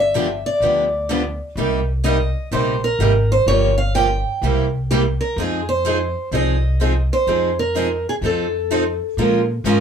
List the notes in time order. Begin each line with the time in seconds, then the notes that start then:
Already playing: G1
0.00 E5
0.15 D3 F3 B3 D4 G4
0.46 D5
0.60 D2 D3 F3 B3 D4 G4
1.09 D3 F3 B3 D4 G4
1.56 C2 C3 G3 A#3 D#4 G4
2.04 C3 G3 A#3 D#4 G4 D#5
2.51 A#1 C3 G3 A#3 D#4 G4 C5
2.84 A#4
2.99 G#1 C3 G3 A#3 D#4 G4
3.32 C5
3.46 G1 C#3 F3 A#3 F4 G4 C#5
3.78 F5
3.94 C#3 F3 A#3 F4 G4 G5
4.42 C2 C3 G3 A#3 E4 G4
4.91 C3 G3 A#3 E4 G4
5.21 A#4
5.36 F2 F3 C4 D#4 G#4
5.69 C5
5.86 F3 C4 D#4 G#4
6.31 C2 F3 C4 D#4 G#4 D#5
6.81 F3 C4 D#4 G#4
7.13 C5
7.27 F2 F3 C4 D#4 G#4
7.59 A#4
7.75 F3 C4 D#4 G#4
8.09 G#4
8.21 F2 F3 C4 D#4 A4
8.26 A4
8.70 F3 C4 D#4 A4
9.17 A#2 F3 G#3 C#4 F4 A#4
9.64 G#2 F3 G#3 C#4 F4 A#4